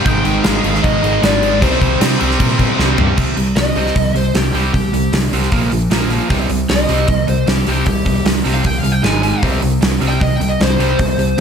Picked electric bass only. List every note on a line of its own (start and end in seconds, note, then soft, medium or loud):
0.06 0.18 G#1 medium
0.25 0.37 G#1 medium
0.45 0.57 G#1 loud
0.64 0.77 G#1 medium
0.84 0.96 G#1 loud
1.04 1.16 G#1 loud
1.23 1.62 G#1 medium
1.62 1.74 C2 loud
1.82 1.94 C2 medium
2.02 2.14 C3 medium
2.22 2.33 C2 medium
2.40 2.65 A#2 loud
2.79 2.91 C2 loud
2.98 3.10 G2 loud
3.18 3.31 C2 medium
3.37 3.51 C2 medium
3.56 3.69 C2 medium
3.76 3.89 C2 medium
3.96 4.09 C2 medium
4.15 4.28 C2 medium
4.34 4.48 C2 medium
4.54 4.67 C2 medium
4.74 4.87 C2 medium
4.93 5.07 C2 medium
5.13 5.26 C2 medium
5.32 5.46 C2 medium
5.53 5.66 A#1 medium
5.71 5.85 A#1 medium
5.91 6.17 A#1 medium
6.30 6.44 C2 medium
6.50 6.63 C2 medium
6.70 6.83 C2 medium
6.89 7.03 C2 medium
7.09 7.22 C2 medium
7.28 7.42 C2 medium
7.47 7.61 C2 medium
7.67 7.80 C2 medium
7.87 8.00 C2 medium
8.06 8.19 C2 medium
8.26 8.39 C2 medium
8.46 8.59 C2 medium
8.65 8.78 C2 medium
8.84 8.97 C2 medium
9.03 9.30 G#1 medium
9.43 9.56 C2 medium
9.63 9.76 C2 medium
9.82 9.96 C2 medium
10.02 10.15 C2 medium
10.21 10.35 C2 medium
10.41 10.54 C2 medium
10.61 10.74 C2 medium
10.79 10.93 C2 medium
11.00 11.13 C2 medium
11.19 11.32 C2 medium